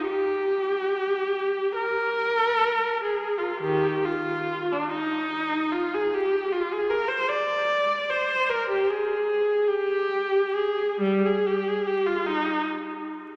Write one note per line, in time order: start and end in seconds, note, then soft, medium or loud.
0.07 1.71 G4 medium
1.76 3.00 A#4 medium
3.04 3.38 G#4 medium
3.38 3.63 F4 medium
3.61 4.04 D#3 medium
3.61 4.06 G4 medium
4.06 4.72 F4 medium
4.72 4.93 D4 medium
4.91 5.71 D#4 medium
5.72 5.93 F4 medium
5.94 6.14 G#4 medium
6.14 6.53 G4 medium
6.52 6.72 F4 medium
6.72 6.92 G#4 medium
6.90 7.10 A#4 medium
7.08 7.29 C5 medium
7.28 8.11 D5 medium
8.10 8.51 C5 medium
8.50 8.71 A#4 medium
8.70 8.90 G4 medium
8.90 9.68 G#4 medium
9.69 10.55 G4 medium
10.53 11.02 G#4 medium
11.00 11.24 G3 medium
11.26 11.48 G#4 medium
11.47 11.68 G4 medium
11.68 11.88 G#4 medium
11.87 12.07 G4 medium
12.06 12.26 F4 medium
12.26 12.65 D#4 medium